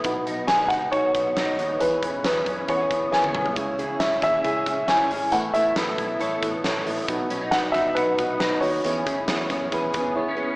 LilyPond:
<<
  \new Staff \with { instrumentName = "Upright piano" } { \time 4/4 \key b \mixolydian \tempo 4 = 136 r4 gis''8 fis''8 cis''2 | b'4 b'4 cis''4 gis''8. r16 | r4 e''8 e''4. gis''4 | fis''8 e''2 r4. |
r4 fis''8 e''8 b'4 b'8 cis''8~ | cis''2. r4 | }
  \new Staff \with { instrumentName = "Synth keys" } { \time 4/4 \key b \mixolydian <dis' fis' b'>4 gis'4 <dis' fis' cis''>4 <dis' fis' cis''>4 | <e' gis' cis''>4 <e' gis' cis''>4 <e' gis' b'>4 <e' gis' cis''>4 | <e' gis' cis''>4 <e' gis' cis''>4 <e' gis' cis''>4 <e' gis' cis''>4 | <e' a' b'>4 <e' a' b'>4 <e' a' cis''>4 <e' a' cis''>4 |
<dis' fis' b'>4 <dis' fis' b'>4 <dis' fis' b'>4 <dis' fis' b'>4 | <e' gis' cis''>4 <e' gis' cis''>4 <e' gis' b'>4 <e' gis' cis''>4 | }
  \new Staff \with { instrumentName = "Clean electric guitar" } { \time 4/4 \key b \mixolydian b,8 dis'8 b8 dis'8 fis'8 b8 dis'8 b8 | e8 cis'8 b8 cis'8 fis'16 gis'16 b8 b16 cis'16 b8 | cis8 e'8 cis'8 e'8 gis'8 cis'8 e'8 cis'8 | a8 e'8 b8 e'8 a'8 b8 e'8 b8 |
b,8 cis'16 dis'16 b8 dis'8 fis'8 b8 dis'8 b8 | e8 cis'8 b8 cis'8 gis'8 b8 b16 cis'16 b8 | }
  \new Staff \with { instrumentName = "Steel-string acoustic guitar" } { \time 4/4 \key b \mixolydian r1 | r1 | <cis gis cis' e' gis'>8 <cis gis cis' e' gis'>8 <cis gis cis' e' gis'>8 <cis' e' gis'>8 <gis cis' e' gis'>8 <cis' e' gis'>4 <cis' e' gis'>8 | <a b e' a'>8 <a b e' a'>8 <a b e' a'>8 <b e' a'>8 <a b e' a'>8 <b e' a'>4 <b e' a'>8 |
<b, fis b dis' fis'>8 <b, fis b dis' fis'>8 <b, fis b dis' fis'>8 <b dis' fis'>8 <fis b dis' fis'>8 <b dis' fis'>4 <b dis' fis'>8 | <e b cis' gis'>8 <e b cis' gis'>8 <e b cis' gis'>8 <b cis' gis'>8 <e b cis' gis'>8 <b cis' gis'>4 <b cis' gis'>8 | }
  \new Staff \with { instrumentName = "Fingered electric bass" } { \clef bass \time 4/4 \key b \mixolydian b,,8 b,,8 b,,8 cis,8 b,,8 b,,8 b,,8 dis,8 | e,8 e,8 e,8 fis,8 e,8 e,8 e,8 b,,8 | cis,8 cis,8 cis,8 dis,8 cis,8 cis,8 cis,8 gis,,8 | a,,8 a,,8 a,,8 b,,8 a,,8 a,,8 a,,8 a,,8 |
b,,8 b,,8 b,,8 cis,8 b,,8 b,,8 b,,8 dis,8 | e,8 e,8 e,8 fis,8 e,8 e,8 r4 | }
  \new DrumStaff \with { instrumentName = "Drums" } \drummode { \time 4/4 <hh bd>8 hh8 <hh sn>8 <hh bd sn>8 <hh bd>8 <hh bd>8 <hh sn>8 hh8 | hh8 <hh bd>8 <hh sn>8 <hh bd>8 <hh bd>8 <hh bd>8 sn16 tommh16 toml16 tomfh16 | <hh bd>8 hh8 <hh sn>8 <hh bd sn>8 <hh bd>8 <hh bd>8 <hh sn>8 hho8 | hh8 hh8 <hh sn>8 <hh bd>8 hh8 <hh bd>8 <hh sn>8 hho8 |
<hh bd>8 hh8 <hh sn>8 <hh bd sn>8 <hh bd>8 <hh bd>8 <hh sn>8 hho8 | hh8 <hh bd>8 <hh sn>8 <hh bd sn>8 <hh bd>8 <hh bd>8 r4 | }
>>